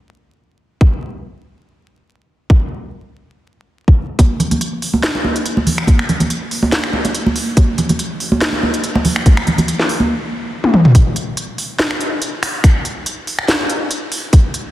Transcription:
0.81 kick loud
2.50 kick loud
3.88 kick medium
4.19 kick loud
4.19 closed hi-hat medium
4.19 high conga medium
4.40 closed hi-hat medium
4.40 muted conga soft
4.40 low conga medium
4.51 closed hi-hat medium
4.51 high conga medium
4.51 low conga medium
4.61 closed hi-hat medium
4.82 open hi-hat medium
4.94 high conga medium
5.03 snare loud
5.03 closed hi-hat medium
5.15 muted conga medium
5.24 high conga medium
5.36 closed hi-hat medium
5.46 closed hi-hat medium
5.57 high conga medium
5.67 open hi-hat medium
5.67 low conga medium
5.78 finger snap medium
5.87 kick loud
5.87 closed hi-hat medium
5.87 high conga loud
5.99 finger snap soft
6.09 closed hi-hat medium
6.09 low conga medium
6.20 closed hi-hat medium
6.20 high conga medium
6.20 low conga medium
6.30 closed hi-hat medium
6.51 open hi-hat medium
6.63 high conga loud
6.72 snare loud
6.72 closed hi-hat medium
6.84 finger snap soft
6.93 high conga medium
7.05 closed hi-hat medium
7.05 muted conga medium
7.15 closed hi-hat medium
7.26 high conga medium
7.36 open hi-hat medium
7.57 kick loud
7.57 closed hi-hat medium
7.57 high conga loud
7.78 closed hi-hat medium
7.78 muted conga soft
7.78 low conga medium
7.89 closed hi-hat medium
7.89 high conga medium
7.89 low conga medium
7.99 closed hi-hat medium
8.20 open hi-hat medium
8.32 high conga medium
8.41 snare loud
8.41 closed hi-hat medium
8.52 muted conga medium
8.63 high conga medium
8.74 closed hi-hat medium
8.84 closed hi-hat medium
8.95 high conga loud
9.05 open hi-hat medium
9.05 low conga medium
9.16 finger snap medium
9.26 kick loud
9.26 closed hi-hat medium
9.26 high conga medium
9.37 finger snap medium
9.47 closed hi-hat medium
9.47 muted conga soft
9.47 low conga medium
9.58 closed hi-hat medium
9.58 high conga medium
9.58 low conga medium
9.68 closed hi-hat medium
9.79 snare soft
9.89 open hi-hat medium
10.00 high conga medium
10.64 high tom medium
10.74 mid tom medium
10.85 mid tom medium
10.95 kick loud
10.95 closed hi-hat medium
11.16 closed hi-hat medium
11.37 closed hi-hat medium
11.58 open hi-hat medium
11.79 snare loud
11.79 closed hi-hat medium
11.91 finger snap soft
12.01 closed hi-hat medium
12.22 closed hi-hat medium
12.43 finger snap medium
12.43 open hi-hat loud
12.64 finger snap medium
12.64 kick loud
12.64 closed hi-hat medium
12.85 closed hi-hat medium
13.06 closed hi-hat medium
13.27 open hi-hat medium
13.39 finger snap medium
13.48 snare loud
13.48 closed hi-hat medium
13.70 closed hi-hat medium
13.91 closed hi-hat medium
14.12 open hi-hat loud
14.33 kick loud
14.33 closed hi-hat medium
14.54 closed hi-hat medium

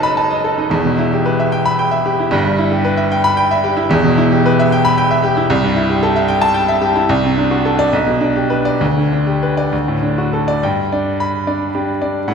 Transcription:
0.00 0.67 F#1 medium
0.00 0.67 F#2 medium
0.00 0.74 F#3 medium
0.00 0.58 D#4 medium
0.00 0.44 A4 medium
0.00 0.73 B4 medium
0.00 0.30 D#5 medium
0.00 0.12 A5 medium
0.00 0.25 B5 loud
0.17 0.39 A5 medium
0.30 0.52 D#5 medium
0.44 0.66 A4 medium
0.58 0.72 D#4 medium
0.70 2.28 E1 medium
0.70 2.29 E2 medium
0.85 1.07 B2 medium
0.98 1.20 E4 medium
1.13 1.34 G4 medium
1.26 1.47 B4 medium
1.39 1.61 E5 medium
1.52 1.74 G5 medium
1.65 1.87 B5 loud
1.79 2.01 G5 medium
1.91 2.13 E5 medium
2.06 2.27 G4 medium
2.20 2.33 E4 medium
2.31 3.86 G1 loud
2.31 3.87 G2 loud
2.45 2.67 G3 medium
2.58 2.80 E4 medium
2.72 2.93 G4 medium
2.85 3.06 B4 medium
2.97 3.19 E5 medium
3.12 3.33 G5 medium
3.24 3.46 B5 loud
3.37 3.59 G5 medium
3.51 3.72 E5 medium
3.64 3.85 G4 medium
3.77 3.91 E4 medium
3.89 5.45 E1 loud
3.89 5.46 E2 loud
4.04 4.26 B2 medium
4.18 4.39 E4 medium
4.32 4.53 G4 medium
4.46 4.66 B4 medium
4.59 4.80 E5 medium
4.72 4.93 G5 loud
4.85 5.06 B5 loud
4.98 5.19 G5 loud
5.11 5.32 E5 medium
5.24 5.45 G4 medium
5.37 5.50 E4 medium
5.50 7.05 C2 loud
5.63 5.84 G2 medium
5.76 5.97 E4 medium
5.89 6.10 G4 medium
6.03 6.24 A4 medium
6.16 6.37 E5 medium
6.28 6.50 G5 loud
6.42 6.63 A5 loud
6.54 6.76 G5 medium
6.68 6.90 E5 medium
6.82 7.03 G4 medium
6.96 7.09 E4 medium
7.09 7.91 C2 loud
7.23 7.45 C3 medium
7.37 7.59 D4 medium
7.51 7.73 F#4 medium
7.65 7.88 A4 medium
7.79 7.93 D5 loud
7.93 8.79 B1 loud
8.06 8.30 B2 medium
8.21 8.44 D4 medium
8.36 8.60 G4 medium
8.50 8.75 B4 medium
8.65 8.81 D5 medium
8.81 9.70 D2 medium
8.97 9.21 D3 medium
9.12 9.37 D4 medium
9.27 9.51 G4 medium
9.43 9.67 B4 medium
9.57 9.73 D5 medium
9.72 10.60 D2 medium
9.88 10.12 A2 medium
10.03 10.27 D4 medium
10.18 10.42 F#4 medium
10.33 10.57 A4 medium
10.48 10.62 D5 medium
10.63 12.25 G2 medium
10.63 11.08 G5 medium
10.92 11.14 D4 medium
10.92 11.37 D5 medium
11.20 11.64 B5 medium
11.47 11.69 D4 medium
11.47 11.91 D5 medium
11.75 11.96 D4 medium
11.75 12.18 G4 medium
12.02 12.23 D4 medium
12.02 12.28 D5 medium
12.28 12.34 A2 medium
12.28 12.34 F#5 medium

